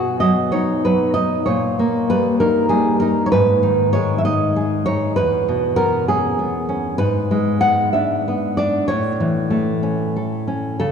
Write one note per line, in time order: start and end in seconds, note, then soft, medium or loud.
0.00 1.43 B2 medium
0.00 0.84 B3 medium
0.00 0.18 F#4 medium
0.20 0.84 F#3 medium
0.20 0.51 D#5 medium
0.52 1.14 D#4 medium
0.52 0.83 C#5 medium
0.85 1.47 F#3 medium
0.85 1.15 B4 medium
1.14 1.47 D#4 soft
1.14 1.45 D#5 medium
1.46 3.28 A#2 medium
1.46 2.07 C#5 medium
1.79 2.70 A#3 medium
2.10 2.69 G3 medium
2.10 2.39 B4 medium
2.40 3.01 D#4 medium
2.40 2.69 A#4 medium
2.69 3.32 G3 medium
2.69 2.99 G#4 medium
3.00 3.33 D#4 soft
3.00 3.24 A#4 medium
3.26 3.31 C#5 medium
3.32 5.15 G#2 medium
3.32 3.92 B4 medium
3.63 4.56 D#3 medium
3.93 4.87 G#3 medium
3.93 4.18 C#5 medium
4.18 4.24 E5 medium
4.25 4.86 D#4 medium
4.25 4.84 D#5 loud
4.56 5.18 G#4 medium
4.86 5.18 D#4 medium
4.86 5.16 C#5 medium
5.16 6.95 E2 medium
5.16 5.75 B4 medium
5.48 6.39 B2 medium
5.76 6.38 B3 medium
5.76 6.06 A#4 loud
6.08 6.68 C#4 medium
6.08 6.96 G#4 medium
6.39 7.00 B3 medium
6.69 7.00 C#4 medium
6.98 8.83 G#2 medium
6.98 7.58 B4 loud
7.31 8.25 G#3 medium
7.61 8.27 B3 medium
7.61 7.92 F#5 loud
7.93 8.57 D4 medium
7.93 8.53 E5 medium
8.28 8.89 B3 medium
8.57 8.89 D4 medium
8.57 8.87 D5 medium
8.88 10.79 A2 medium
8.88 10.78 C#5 medium
9.20 10.16 E3 medium
9.50 10.48 A3 medium
9.83 10.46 C#4 soft
10.16 10.78 A4 medium
10.47 10.81 C#4 soft
10.80 10.92 C#3 medium
10.80 10.92 A4 medium